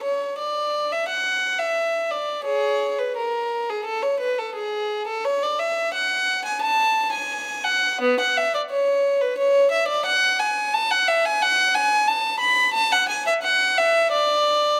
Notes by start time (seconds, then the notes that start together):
0.03 C#5
0.39 D5
0.92 E5
1.08 F#5
1.59 E5
2.11 D5
2.44 G#4 C#5
2.99 B4
3.17 A#4
3.70 G#4
3.85 A4
4.03 C#5
4.20 B4
4.39 A4
4.56 G#4
5.07 A4
5.25 C#5
5.43 D5
5.59 E5
5.94 F#5
6.45 G#5
6.61 A5
7.12 G#5
7.64 F#5
8.01 B3
8.20 F#5
8.37 E5
8.54 D5
8.70 C#5
9.21 B4
9.38 C#5
9.71 E5
9.88 D5
10.06 F#5
10.39 G#5
10.74 A5
10.91 F#5
11.08 E5
11.25 G#5
11.42 F#5
11.75 G#5
12.07 A5
12.40 B5
12.73 A5
12.92 F#5
13.09 G#5
13.27 E5
13.43 F#5
13.78 E5
14.12 D5